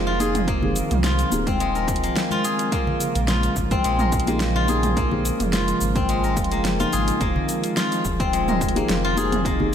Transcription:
Already playing: F1 D#3 F3 G#3 A#3 C4 F4 G#4 A#4
0.07 F4
0.19 A#3 D#4 G#4, closed hi-hat, cabasa
0.35 closed hi-hat, mid tom, high conga, cabasa
0.48 A#3, kick, closed hi-hat, cabasa
0.61 A#3 D#4 G#4, high conga, low conga
0.76 closed hi-hat, cabasa
0.91 C2, closed hi-hat, mid tom, cabasa
1.04 F4, snare, closed hi-hat, cabasa
1.19 closed hi-hat, cabasa
1.31 D#1 A#3 D#4 G#4, cabasa
1.47 C4, kick, closed hi-hat, high conga, cabasa
1.60 G#3, closed hi-hat, cabasa
1.75 A#4, cabasa
1.88 kick, closed hi-hat, high bongo, cabasa
1.96 closed hi-hat
2.03 A#3, closed hi-hat, cabasa
2.16 snare, closed hi-hat, cabasa
2.31 F4, high conga, cabasa
2.45 G#4, closed hi-hat, cabasa
2.59 closed hi-hat, high bongo, cabasa
2.72 C#3 A#3 F4, kick, closed hi-hat, cabasa
2.87 low conga
3.00 closed hi-hat, high bongo, cabasa
3.15 A#1, closed hi-hat, cabasa
3.28 F4, snare, closed hi-hat, cabasa
3.43 closed hi-hat, cabasa
3.56 G#1, kick, cabasa
3.71 C4, kick, closed hi-hat, cabasa
3.84 A#1 G#3, closed hi-hat, cabasa
3.99 A#4, mid tom, cabasa
4.12 kick, closed hi-hat, cabasa
4.20 closed hi-hat
4.26 A#3 D#4 G#4, closed hi-hat, high conga, cabasa
4.40 snare, closed hi-hat, cabasa
4.56 F4
4.68 A#3 D#4 G#4, closed hi-hat, cabasa
4.83 closed hi-hat, mid tom, high conga, cabasa
4.97 A#3, kick, closed hi-hat, cabasa
5.10 A#3 D#4 G#4, high conga, low conga
5.25 closed hi-hat, high bongo, cabasa
5.40 F1, closed hi-hat, mid tom, cabasa
5.53 F4, snare, closed hi-hat, cabasa
5.68 closed hi-hat, cabasa
5.81 G#1, cabasa
5.96 C4, kick, closed hi-hat, high conga, cabasa
6.09 G#3, closed hi-hat, cabasa
6.24 A#4, cabasa
6.37 F1, kick, closed hi-hat, high bongo, cabasa
6.44 closed hi-hat
6.51 A#3, closed hi-hat, cabasa
6.65 snare, closed hi-hat, cabasa
6.79 A#3 D#4 F4 A#4, high conga, cabasa
6.93 G#1 G#4, closed hi-hat, cabasa
7.08 closed hi-hat, high bongo, cabasa
7.20 F1 D#3 A#3 C4, kick, closed hi-hat, cabasa
7.36 low conga
7.49 closed hi-hat, high bongo, cabasa
7.64 closed hi-hat, cabasa
7.77 F4, snare, closed hi-hat, cabasa
7.92 closed hi-hat, cabasa
8.05 D#1, kick, cabasa
8.20 C4, kick, closed hi-hat, cabasa
8.33 G#3, closed hi-hat, cabasa
8.48 A#4, mid tom, cabasa
8.61 kick, closed hi-hat, cabasa
8.69 closed hi-hat
8.74 A#3 D#4 G#4, closed hi-hat, high conga, cabasa
8.89 F1, snare, closed hi-hat, cabasa
9.05 F4
9.16 A#3 D#4 G#4, closed hi-hat, cabasa
9.32 closed hi-hat, mid tom, high conga, cabasa
9.45 A#3 D#4, kick, closed hi-hat, cabasa
9.59 A#3 D#4 G#4, high conga, low conga

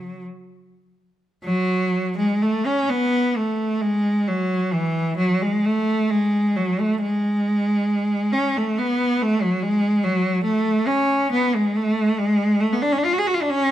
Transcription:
Already playing: F#3
1.44 F#3
2.18 G#3
2.42 A3
2.66 C#4
2.90 B3
3.37 A3
3.81 G#3
4.28 F#3
4.73 E3
5.17 F#3
5.42 G#3
5.65 A3
6.11 G#3
6.56 F#3
6.80 A3
7.01 G#3
8.33 C#4
8.57 A3
8.79 B3
9.22 A3
9.42 F#3
9.63 G#3
10.04 F#3
10.45 A3
10.87 C#4
11.33 B3
11.56 G#3
11.76 A3
12.19 G#3
12.60 A3
12.73 B3
12.82 D4
12.92 C#4
12.98 D4
13.05 F4
13.13 F#4
13.19 G#4
13.27 F#4
13.34 F4
13.43 D4
13.50 C#4

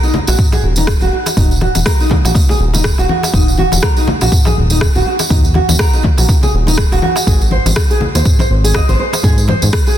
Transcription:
0.03 D#4, tambourine
0.14 muted conga, high conga, low conga
0.27 A#1 F#4, tambourine, darbuka tek
0.38 kick, tambourine, darbuka dum
0.52 G#4, tambourine, darbuka ka, muted conga, high conga
0.63 D#1
0.76 D#4, tambourine, muted conga
0.87 kick, cross-stick
1.01 D#1 F#4, tambourine, muted conga
1.13 F#4
1.26 tambourine, muted conga, darbuka ka, darbuka tek
1.37 D#1 D#4, kick, tambourine, darbuka dum
1.51 tambourine
1.61 F#4, darbuka ka, muted conga, high conga
1.75 D#1, tambourine, darbuka tek, high conga
1.86 A#4, kick, cross-stick, tambourine, muted conga
2.00 D#4, tambourine
2.10 kick, muted conga, high conga, low conga
2.25 A#1 F#4, tambourine, darbuka tek
2.35 kick, tambourine, low conga
2.49 G#4, tambourine, muted conga, low conga
2.60 D#1
2.73 D#4, tambourine, muted conga, low conga
2.84 kick, cross-stick, tambourine
2.98 D#1 F#4, tambourine, darbuka ka, muted conga
3.09 F#4, high conga
3.23 tambourine, muted conga, darbuka ka
3.33 D#1 D#4, kick, tambourine, darbuka dum
3.48 tambourine
3.58 F#4, muted conga, high conga
3.72 D#1, tambourine, darbuka tek, high conga
3.83 A#4, kick, cross-stick, tambourine
3.96 D#4, tambourine
4.07 muted conga, high conga, low conga
4.21 A#1 F#4, tambourine, darbuka tek
4.32 kick, tambourine, darbuka dum
4.45 G#4, tambourine, darbuka ka, muted conga, high conga
4.57 D#1
4.70 D#4, tambourine, muted conga
4.81 kick, cross-stick, tambourine
4.95 D#1 F#4, tambourine, muted conga
5.06 F#4
5.19 tambourine, darbuka ka, muted conga, darbuka tek
5.30 D#1 D#4, kick, tambourine, darbuka dum
5.45 tambourine
5.54 F#4, darbuka ka, muted conga, high conga
5.69 D#1, tambourine, high conga, darbuka tek
5.79 A#4, kick, cross-stick, muted conga
5.93 D#4, tambourine
6.03 kick, muted conga, high conga, low conga
6.18 A#1 F#4, tambourine, darbuka tek
6.29 kick, tambourine, low conga
6.42 G#4, tambourine, muted conga, low conga
6.53 D#1
6.67 D#4, tambourine, muted conga, low conga
6.78 kick, cross-stick, tambourine
6.91 D#1 F#4, tambourine, muted conga, darbuka ka
7.02 F#4, high conga
7.16 tambourine, darbuka ka, muted conga
7.27 G#1 G#4, kick, tambourine, darbuka dum
7.41 tambourine
7.51 C5, muted conga, high conga
7.65 G#1, tambourine, darbuka tek, high conga
7.76 kick, cross-stick, tambourine
7.90 G#4, tambourine
8.00 muted conga, high conga, low conga
8.15 D#2 C5, tambourine, darbuka tek
8.25 kick, tambourine, darbuka dum
8.39 C5, tambourine, muted conga, darbuka ka, high conga
8.50 G#1
8.64 G#4, tambourine, muted conga
8.75 D#5, kick, cross-stick
8.89 G#1 C5, tambourine, muted conga
8.99 C5
9.13 tambourine, muted conga, darbuka ka, darbuka tek
9.23 G#1 G#4, kick, tambourine, darbuka dum
9.38 tambourine
9.48 C5, darbuka ka, muted conga, high conga
9.62 G#1, tambourine, high conga, darbuka tek
9.73 kick, cross-stick, tambourine, muted conga
9.87 G#4, tambourine

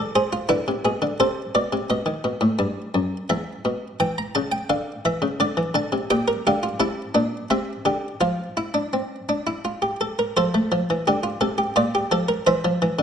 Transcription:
Already playing: E3 A4
0.16 G#4 C5
0.33 F4
0.49 D3 E4 B4
0.68 C3
0.85 B2 G#4
1.02 D3
1.20 C3 A4 C5
1.55 B2 D5
1.73 C3
1.90 B2 D#5
2.06 D#3
2.24 B2
2.41 A2
2.59 G2
2.94 F#2
3.30 E2 E5
3.65 B2
4.00 E3 G5
4.18 A#5
4.35 C#3 A5
4.52 G5
4.70 D3 F5
5.05 E3 E5
5.22 C#3
5.40 D3 D5
5.57 E3
5.74 D3 A5
5.92 C3
6.10 A#2 G4 G5
6.28 A#4
6.47 D3 G4 F5
6.63 F4
6.80 C3 E4 A5
7.15 A#2 D4
7.50 C3 C4 E5
7.85 D3 G4
8.21 F3 F4 F5
8.57 E4
8.74 D4
8.93 C4
9.29 D4
9.47 E4
9.65 F4
9.82 G4
10.01 A4
10.19 A#4
10.37 F3 A4 C5
10.54 A3
10.72 F3
10.90 E3
11.07 D3 G4
11.23 F4
11.41 C3 A4
11.58 G4
11.76 A#2 F4 D5
11.95 G4
12.11 F3 A4
12.28 A#4
12.47 E3 C5 E5
12.65 F3
12.82 E3
12.99 D3

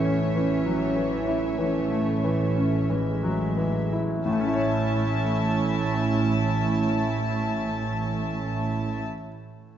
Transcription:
Already playing: A1 A2 E3 A3 C#4 C#5 E5
0.05 C#4
0.35 E3
0.65 F#3
0.96 E3
1.28 E4
1.58 E3 A3
1.91 A3
2.24 E3
2.56 C#4
2.90 E3 G#3
3.23 F#3
3.57 E3
3.93 E4
4.25 A1 A2 A3 C#4 E4 E5 A5
4.33 A3
4.40 C#4
4.47 E4
4.53 C#5

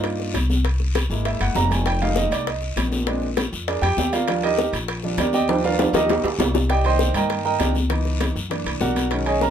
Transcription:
Already playing: G2 A#3 D4 D#4 F4
0.04 high bongo, high conga, high timbale, long guiro
0.20 high bongo, high conga
0.34 C2, high bongo, low bongo, high conga, high timbale, short guiro
0.50 high bongo, high conga, short guiro
0.65 high bongo, high conga, high timbale, long guiro
0.80 high bongo, high conga
0.95 high bongo, high conga, high timbale, short guiro
1.10 G#1 G#3 A#3 E4, high conga, short guiro
1.25 E5, high bongo, high conga, high timbale, long guiro
1.40 F#1 F#5, high bongo, high conga, high timbale
1.55 F1 A#5, high bongo, low bongo, high conga, low timbale, short guiro
1.71 G#5, high bongo, high conga, high timbale, short guiro
1.86 G5, high bongo, high conga, high timbale, long guiro
2.01 G3 G#3 A#3 D#4 F5, high bongo, high conga, high timbale
2.16 D#5, high bongo, high conga, short guiro
2.31 C2 D5, high conga, high timbale, short guiro
2.47 D#5, high bongo, high conga, high timbale, long guiro
2.62 high bongo, high conga
2.76 A#1, high bongo, low bongo, high conga, high timbale, short guiro
2.92 high bongo, high conga, short guiro
3.06 G#3 C4 D4, high bongo, high conga, high timbale, long guiro
3.22 high bongo, high conga
3.37 high bongo, high conga, high timbale, short guiro
3.53 F2, short guiro
3.68 D4 G#4 A#4 D5, high bongo, high conga, high timbale, long guiro
3.82 F2 G4 G5, high bongo, high conga, high timbale
3.97 D#2, high bongo, low bongo, high conga, low timbale, short guiro
4.13 F4 A#4 D5 F5, high bongo, high conga, high timbale, short guiro
4.28 F3 G3 D4, high bongo, high timbale, long guiro
4.43 D#4 G4 A#4 D#5, high bongo, high conga, high timbale
4.58 high bongo, high conga, short guiro
4.73 A#1, high conga, high timbale, short guiro
4.88 high bongo, high conga, high timbale, long guiro
5.03 F3 G3 D4, high bongo, high conga
5.17 D#2 D4 G4 A#4 D5, high bongo, low bongo, high conga, high timbale, short guiro
5.33 G4 D5 D#5 G5, high bongo, high conga, short guiro
5.48 F3 G3 D4, high bongo, high conga, high timbale, long guiro
5.64 F4 A#4 D5 F5, high bongo, high timbale
5.79 high bongo, high conga, high timbale, short guiro
5.93 D#2 F3 G3 D4 D#4 G4 A#4 D#5, high bongo, low timbale, short guiro
6.09 low bongo, high conga, low timbale, long guiro
6.23 D2, low bongo, high conga, low timbale
6.39 C2, low bongo, high conga, low timbale, short guiro
6.54 low bongo, high conga, low timbale, short guiro
6.69 G4 D5 D#5 G5, high bongo, high conga, high timbale, long guiro
6.84 D#3 A#3 C5 D5 D#5 G5 C6, high bongo, high conga, high timbale
6.99 high bongo, high conga, short guiro
7.14 G2 A#4 D#5 G5 A#5, high conga, low conga, high timbale, short guiro
7.30 high bongo, high conga, high timbale, long guiro
7.45 A#4 D#5 G5 A#5, high bongo, high conga
7.60 C#2 D#3 A#3 D4, high bongo, low bongo, high conga, high timbale, low timbale, short guiro
7.75 high bongo, high conga, short guiro
7.89 E3 B3 D#4, high bongo, high timbale, long guiro
8.05 high bongo, high conga
8.21 high bongo, high conga, high timbale, short guiro
8.36 F#2, short guiro
8.50 E3 A#3 D4, high bongo, high conga, high timbale, long guiro
8.65 C2, high bongo, high conga, high timbale
8.81 B1 F#4 A#4 D5 F#5, high bongo, low bongo, high conga, short guiro
8.96 high bongo, high conga, high timbale, short guiro
9.11 D#3 G#3 C#4, high bongo, high conga, high timbale, long guiro
9.26 G#4 C#5 D#5 G#5, high bongo, high conga, high timbale
9.41 A#4 A#5, high bongo, high conga, short guiro

